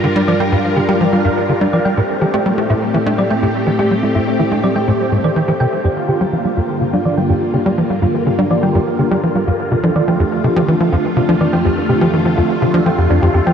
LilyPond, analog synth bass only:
\new Staff \with { instrumentName = "Analog synth bass" } { \clef bass \time 4/4 \key g \minor \tempo 4 = 124 d16 g16 f16 g16 g,16 r16 d16 g16 f16 g16 g,16 r16 d16 g16 f16 g16 | a,16 r16 e16 a16 g16 a16 a,16 r16 e16 a16 g16 a16 a,16 r16 e16 a16 | g16 a16 a,16 r16 e16 a16 g16 a16 a,16 r16 a,16 e16 e16 e16 c16 r16 | g,16 r16 d16 g16 f16 g16 g,16 r16 d16 g16 f16 g16 g,16 r16 d16 g16 |
f16 g16 g,16 r16 d16 g16 f16 g16 g,16 r16 d16 g16 f16 g16 g,16 r16 | c16 f16 e16 f16 f,16 r16 c16 f16 e16 f16 f,16 r16 c16 f16 e16 f16 | f,16 r16 c16 f16 e16 f16 f,16 r16 c16 f16 f16 f,16 f,16 f,16 f,16 f16 | }